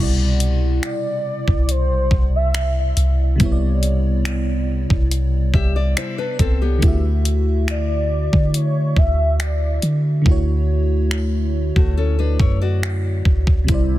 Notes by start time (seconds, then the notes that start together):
Already playing: C2 C3 G3 F#5
0.00 B2 E4 D5
0.40 closed hi-hat
0.83 D5, finger snap, closed hi-hat
1.48 C2, kick
1.69 C5, closed hi-hat
1.90 B1
2.11 C2, kick
2.35 E5
2.54 finger snap, closed hi-hat
2.97 C2, closed hi-hat
3.36 C3 G3
3.40 C2 B3 E4, kick, closed hi-hat
3.46 C#5
3.52 D5
3.83 closed hi-hat
4.25 finger snap, closed hi-hat
4.90 C2, kick
5.11 closed hi-hat
5.54 C2 G4 E5, kick
5.76 D5
5.97 E4 C5, finger snap, closed hi-hat
6.18 D4 B4
6.39 C2 C4 A4, kick, closed hi-hat
6.62 B3 G4
6.78 D3 A3
6.82 D2 E4 F#4, kick, closed hi-hat
6.88 E5
7.25 closed hi-hat
7.68 D5, finger snap, closed hi-hat
8.33 D3, kick
8.54 C#5, closed hi-hat
8.97 D2 E5, kick
9.40 D5, finger snap, closed hi-hat
9.82 D3, closed hi-hat
10.22 D3 A3
10.26 D2 E4 F#4, kick
10.31 C#5
11.11 finger snap
11.76 D2 A3 F#4, kick
11.97 C#4 A4
12.19 D4 B4
12.39 F#2 E4 C#5, kick
12.61 F#4 D5
12.83 finger snap
13.25 D2, kick
13.47 D2, kick
13.64 C3 G3
13.68 C2 D3 C4 E4 C5, kick, closed hi-hat
13.74 D5